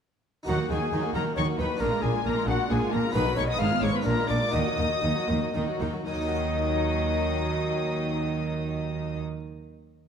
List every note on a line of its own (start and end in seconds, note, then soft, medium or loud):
0.43 0.57 F#3 medium
0.43 1.75 D#4 medium
0.43 1.76 F#4 medium
0.43 0.68 F#4 medium
0.43 1.77 A#4 medium
0.47 0.56 D#2 medium
0.47 0.68 D#3 medium
0.47 0.56 D#3 medium
0.47 0.58 D#4 medium
0.47 0.69 F#5 loud
0.58 0.70 A#3 medium
0.58 0.70 F#4 medium
0.69 0.78 D#2 medium
0.69 0.78 D#3 medium
0.69 0.90 D#3 medium
0.69 0.81 F#3 medium
0.69 0.82 D#4 medium
0.69 1.13 G#4 medium
0.69 1.14 G#5 medium
0.81 0.92 A#3 medium
0.81 0.92 F#4 medium
0.92 1.01 D#2 medium
0.92 1.12 D#3 medium
0.92 1.01 D#3 medium
0.92 1.03 F#3 medium
0.92 1.03 D#4 medium
1.02 1.14 A#3 medium
1.02 1.14 F#4 medium
1.13 1.22 D#2 medium
1.13 1.22 D#3 medium
1.13 1.35 D#3 medium
1.13 1.25 F#3 medium
1.13 1.25 D#4 medium
1.13 1.35 A#4 medium
1.13 1.23 A#5 loud
1.24 1.36 A#3 medium
1.24 1.37 F#4 medium
1.35 1.44 D#2 medium
1.35 1.45 D#3 medium
1.35 1.57 D#3 medium
1.35 1.47 F#3 medium
1.35 1.46 D#4 medium
1.35 1.41 C#5 medium
1.35 1.46 C#6 loud
1.46 1.59 A#3 medium
1.46 1.58 F#4 medium
1.58 1.67 D#2 medium
1.58 1.67 D#3 medium
1.58 1.79 D#3 medium
1.58 1.70 F#3 medium
1.58 1.70 D#4 medium
1.58 1.82 B4 medium
1.58 1.81 B5 medium
1.69 1.79 A#3 medium
1.69 1.81 F#4 medium
1.77 1.91 A#3 medium
1.77 3.08 D4 medium
1.77 1.91 D4 medium
1.77 3.09 F4 medium
1.77 3.10 G#4 medium
1.77 2.03 A#4 loud
1.81 1.89 A#1 medium
1.81 1.89 A#2 medium
1.81 2.01 A#2 medium
1.81 2.03 A#5 loud
1.90 2.03 G#3 medium
1.90 2.02 F4 medium
2.01 2.11 A#1 medium
2.01 2.11 A#2 medium
2.01 2.24 A#2 medium
2.01 2.14 A#3 medium
2.01 2.14 D4 medium
2.01 2.24 G#4 medium
2.01 2.26 G#5 loud
2.13 2.25 G#3 medium
2.13 2.25 F4 medium
2.24 2.33 A#1 medium
2.24 2.34 A#2 medium
2.24 2.46 A#2 medium
2.24 2.36 A#3 medium
2.24 2.35 D4 medium
2.24 2.49 A#4 medium
2.24 2.48 A#5 loud
2.34 2.48 G#3 medium
2.34 2.47 F4 medium
2.46 2.55 A#1 medium
2.46 2.56 A#2 medium
2.46 2.68 A#2 medium
2.46 2.59 A#3 medium
2.46 2.58 D4 medium
2.46 2.52 G#4 medium
2.46 2.70 F#5 loud
2.51 2.69 F#4 medium
2.57 2.70 G#3 medium
2.57 2.69 F4 medium
2.68 2.78 A#1 medium
2.68 2.78 A#2 medium
2.68 2.90 A#2 medium
2.68 2.80 A#3 medium
2.68 2.79 D4 medium
2.68 2.92 G#4 medium
2.68 2.93 G#5 loud
2.79 2.92 G#3 medium
2.79 2.91 F4 medium
2.91 3.00 A#1 medium
2.91 3.01 A#2 medium
2.91 3.13 A#2 medium
2.91 3.03 A#3 medium
2.91 3.03 D4 medium
2.91 3.13 A#4 medium
2.91 3.15 A#5 loud
3.03 3.15 G#3 medium
3.03 3.14 F4 medium
3.11 3.22 B1 medium
3.11 3.25 D#3 medium
3.11 3.53 B3 medium
3.11 3.55 D#4 medium
3.11 3.25 D#4 medium
3.11 3.58 F#4 medium
3.11 3.35 B4 loud
3.11 3.37 B5 loud
3.15 3.23 B2 medium
3.15 3.35 B2 medium
3.26 3.37 F#3 medium
3.26 3.37 F#4 medium
3.36 3.45 B1 medium
3.36 3.58 B2 medium
3.36 3.46 B2 medium
3.36 3.48 D#3 medium
3.36 3.48 D#4 medium
3.36 3.49 C#5 medium
3.36 3.42 C#6 loud
3.47 3.60 F#3 medium
3.47 3.59 F#4 medium
3.47 3.60 D#5 medium
3.47 3.60 D#6 loud
3.54 4.02 B3 medium
3.54 4.03 D#4 medium
3.54 4.03 G#4 medium
3.58 3.68 G#1 medium
3.58 3.80 G#2 medium
3.58 3.68 G#2 medium
3.58 3.71 G#3 medium
3.58 3.70 D#4 medium
3.58 3.81 F5 loud
3.58 3.83 F6 loud
3.70 3.83 B3 medium
3.70 3.82 F4 medium
3.81 3.91 G#1 medium
3.81 4.03 G#2 medium
3.81 3.91 G#2 medium
3.81 3.94 G#3 medium
3.81 3.94 D#4 medium
3.81 3.93 C#5 medium
3.81 3.95 C#6 loud
3.93 4.06 B3 medium
3.93 4.06 F4 medium
3.93 4.06 B4 medium
3.93 4.06 B5 medium
4.01 4.46 A#3 medium
4.01 4.16 A#3 medium
4.01 4.51 D4 medium
4.01 4.16 D4 medium
4.01 4.51 G#4 medium
4.01 4.28 A#4 medium
4.06 4.14 A#1 medium
4.06 4.27 A#2 medium
4.06 4.14 A#2 medium
4.06 4.29 A#5 loud
4.17 4.29 G#3 medium
4.17 4.29 F4 medium
4.29 4.38 A#1 medium
4.29 4.51 A#2 medium
4.29 4.38 A#2 medium
4.29 4.42 A#3 medium
4.29 4.41 D4 medium
4.29 4.52 D5 medium
4.29 4.53 D6 loud
4.41 4.53 G#3 medium
4.41 4.54 F4 medium
4.48 6.00 A#3 medium
4.48 6.01 D#4 medium
4.48 6.01 F#4 medium
4.52 4.62 D#2 medium
4.52 4.75 D#3 medium
4.52 4.62 D#3 medium
4.52 4.64 A#3 medium
4.52 4.65 D#4 medium
4.52 5.77 D#5 loud
4.52 5.80 D#6 loud
4.65 4.78 F#3 medium
4.65 4.78 F#4 medium
4.77 4.86 D#2 medium
4.77 5.00 D#3 medium
4.77 4.87 D#3 medium
4.77 4.90 A#3 medium
4.77 4.91 D#4 medium
4.90 5.03 F#3 medium
4.90 5.03 F#4 medium
5.02 5.10 D#2 medium
5.02 5.25 D#3 medium
5.02 5.12 D#3 medium
5.02 5.14 A#3 medium
5.02 5.15 D#4 medium
5.14 5.27 F#3 medium
5.14 5.28 F#4 medium
5.27 5.36 D#2 medium
5.27 5.51 D#3 medium
5.27 5.37 D#3 medium
5.27 5.41 A#3 medium
5.27 5.41 D#4 medium
5.40 5.54 F#3 medium
5.40 5.54 F#4 medium
5.53 5.62 D#2 medium
5.53 5.77 D#3 medium
5.53 5.63 D#3 medium
5.53 5.66 A#3 medium
5.53 5.66 D#4 medium
5.66 5.80 F#3 medium
5.66 5.80 F#4 medium
5.79 5.89 D#2 medium
5.79 5.88 D#3 medium
5.79 6.04 D#3 medium
5.79 5.93 A#3 medium
5.79 5.93 D#4 medium
5.93 6.05 F#3 medium
5.93 6.07 F#4 medium
6.05 9.19 D#2 medium
6.05 9.19 D#3 medium
6.05 9.20 D#3 medium
6.05 9.18 F#3 medium
6.05 9.19 D#4 medium
6.05 9.18 D#5 medium
6.05 9.19 D#6 medium
6.14 9.26 A#3 medium
6.21 9.33 D#4 medium
6.28 9.40 F#4 medium
6.35 9.47 D#5 medium